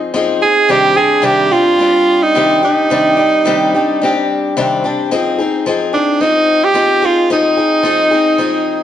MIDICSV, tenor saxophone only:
0, 0, Header, 1, 2, 480
1, 0, Start_track
1, 0, Tempo, 552486
1, 604, Time_signature, 4, 2, 24, 8
1, 7672, End_track
2, 0, Start_track
2, 0, Title_t, "Tenor saxophone"
2, 0, Program_c, 0, 66
2, 368, Note_on_c, 0, 68, 106
2, 618, Note_on_c, 0, 67, 122
2, 631, Note_off_c, 0, 68, 0
2, 845, Note_on_c, 0, 68, 106
2, 858, Note_off_c, 0, 67, 0
2, 1090, Note_on_c, 0, 67, 110
2, 1103, Note_off_c, 0, 68, 0
2, 1323, Note_on_c, 0, 65, 106
2, 1336, Note_off_c, 0, 67, 0
2, 1937, Note_on_c, 0, 63, 101
2, 1950, Note_off_c, 0, 65, 0
2, 2292, Note_off_c, 0, 63, 0
2, 2297, Note_on_c, 0, 63, 89
2, 3697, Note_off_c, 0, 63, 0
2, 5159, Note_on_c, 0, 62, 90
2, 5396, Note_on_c, 0, 63, 107
2, 5409, Note_off_c, 0, 62, 0
2, 5771, Note_on_c, 0, 67, 117
2, 5784, Note_off_c, 0, 63, 0
2, 6131, Note_on_c, 0, 65, 100
2, 6144, Note_off_c, 0, 67, 0
2, 6360, Note_off_c, 0, 65, 0
2, 6365, Note_on_c, 0, 63, 100
2, 7672, Note_off_c, 0, 63, 0
2, 7672, End_track
0, 0, End_of_file